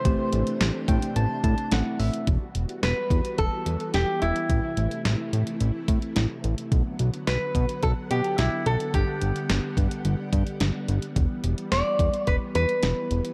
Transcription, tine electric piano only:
\new Staff \with { instrumentName = "Tine electric piano" } { \time 4/4 \key e \minor \tempo 4 = 108 << { r4. g''8 a''8 a''8 fis''8 e''8 | r1 | r1 | r1 |
r1 | r1 | } \\ { <a c' g'>2. <a c' e'>4 | r1 | r1 | r1 |
r1 | r1 | } >> }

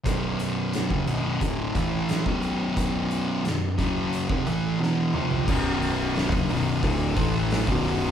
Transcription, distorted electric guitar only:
\new Staff \with { instrumentName = "Distorted electric guitar" } { \clef bass \time 4/4 \key b \minor \tempo 4 = 89 <b,, fis, b,>4~ <b,, fis, b,>16 <fis, cis>16 <b,, fis, b,>8 <d, a, d>8 <a, e a>8. <b,, fis, b,>8.~ | <b,, fis, b,>4 <b,, fis,>8 <fis, cis fis>8. <eis, c>16 <a, e a>8 <e, b, e>8 <eis, c eis>8 | <b,, fis, b,>4~ <b,, fis, b,>16 <fis, cis>16 <b,, fis, b,>8 <d, a, d>8 <a, e a>8. <b,, fis, b,>8. | }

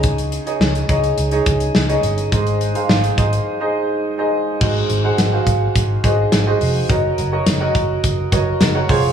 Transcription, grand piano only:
<<
  \new Staff \with { instrumentName = "Grand piano" } { \time 4/4 \key aes \mixolydian \tempo 4 = 105 <ees' aes' des'' ees''>8 r16 <ees' aes' des'' ees''>8. <ees' aes' des'' ees''>8. <ees' aes' des'' ees''>8. r16 <ees' aes' des'' ees''>8. | <ees' aes' c'' ees''>8. <ees' aes' c'' f''>8. <ees' aes' c'' ees''>8. <ees' aes' c'' ees''>8. r16 <ees' aes' c'' ees''>8. | <ges' aes' c'' ees''>8. <ges' aes' c'' ges''>8 <ges' aes' c'' f''>4 r16 <ges' aes' c'' ees''>8. <ges' aes' c'' ees''>8. | <ges' bes' des'' ees''>8. <ges' bes' des'' ees''>8 <ges' bes' des'' ees''>4 r16 <ges' bes' des'' ees''>8. <ges' bes' des'' ges''>16 <f' aes' c'' des''>8 | }
  \new Staff \with { instrumentName = "Grand piano" } { \clef bass \time 4/4 \key aes \mixolydian des4 r2. | aes,4. r2 r8 | aes,4. r2 r8 | r1 | }
>>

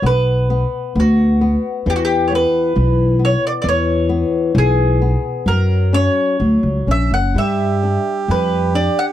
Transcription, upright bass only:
\new Staff \with { instrumentName = "Upright bass" } { \clef bass \time 2/4 \key b \minor \tempo 4 = 66 b,,4 d,4 | e,4 b,,4 | e,4 b,,4 | fis,4 d,16 cis,16 ais,,16 fis,,16 |
g,4 eis,4 | }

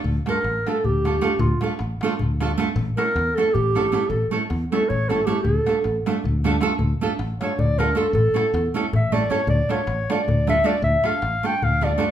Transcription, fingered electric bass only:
\new Staff \with { instrumentName = "Fingered electric bass" } { \clef bass \time 7/8 \key d \minor \tempo 4 = 156 d,8 r8 a,,8 r8 d,4. | d,8 r8 a,,8 r8 d,4. | a,,8 r8 e,8 r8 a,,4. | a,,8 r8 e,8 r8 a,,4. |
d,8 r8 a,,8 r8 d,4. | d,8 r8 a,,8 r8 d,4. | a,,8 r8 e,8 r8 a,,4. | d,8 r8 a,,8 r8 d,4. |
d,8 r8 a,,8 r8 d,4. | }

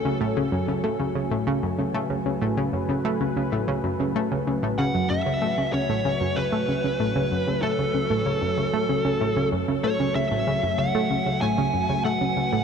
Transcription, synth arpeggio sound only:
\new Staff \with { instrumentName = "Synth arpeggio sound" } { \clef bass \time 4/4 \key fis \minor \tempo 4 = 95 cis16 a,16 cis16 fis,16 cis16 a16 cis16 cis16 a,16 cis16 fis,16 cis16 a16 cis16 cis16 a,16 | cis16 fis,16 cis16 a16 cis16 cis16 a,16 cis16 fis,16 cis16 a16 cis16 cis16 a,16 cis16 fis,16 | fis,16 cis16 a16 cis16 cis16 a,16 cis16 fis,16 cis16 a16 cis16 cis16 a,16 cis16 fis,16 cis16 | a16 cis16 cis16 a,16 cis16 fis,16 cis16 a16 cis16 cis16 a,16 cis16 fis,16 cis16 a16 cis16 |
cis16 a,16 cis16 fis,16 cis16 a16 cis16 cis16 a,16 cis16 fis,16 cis16 a16 cis16 cis16 a,16 | }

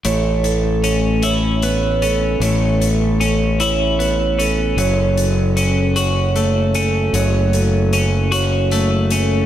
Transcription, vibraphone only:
\new Staff \with { instrumentName = "Vibraphone" } { \time 6/8 \key a \major \tempo 4. = 51 cis''8 a'4 cis''4 a'8 | cis''8 a'4 cis''4 a'8 | cis''8 a'4 cis''4 a'8 | cis''8 a'4 cis''4 a'8 | }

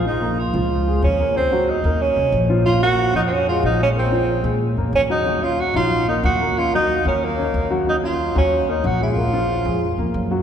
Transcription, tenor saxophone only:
\new Staff \with { instrumentName = "Tenor saxophone" } { \time 4/4 \key bes \minor \tempo 4 = 184 ees'4 f'2 des'4 | c'4 ees'4 des'4. r8 | f'8 ges'4 ees'16. c'32 des'8 f'8 ees'8 des'8 | c'2 r4 des'8 ees'8~ |
ees'8 f'8 ges'8 f'4 ees'8 ges'4 | f'8 ees'4 des'8 bes4. r8 | ees'8 f'4 des'4 ees'8 ges'8 f'8~ | f'2. r4 | }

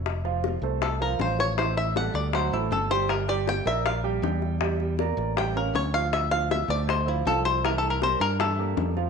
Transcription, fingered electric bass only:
\new Staff \with { instrumentName = "Fingered electric bass" } { \clef bass \time 4/4 \key f \major \tempo 4 = 158 f,,4. c,4. a,,4~ | a,,4. d,4 a,,8 g,,4~ | g,,4. bes,,4. e,4~ | e,4. a,,4. d,4~ |
d,4. d,4. c,4~ | c,4. g,4. f,4 | }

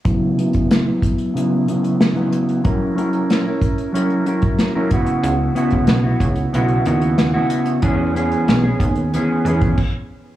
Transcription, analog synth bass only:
\new Staff \with { instrumentName = "Analog synth bass" } { \clef bass \time 4/4 \key cis \dorian \tempo 4 = 93 r1 | r1 | cis,8 r16 cis,16 b,,8 cis,8 b,,8 dis,4 r8 | e,4 b,,8 dis,8. r16 e,8 r4 | }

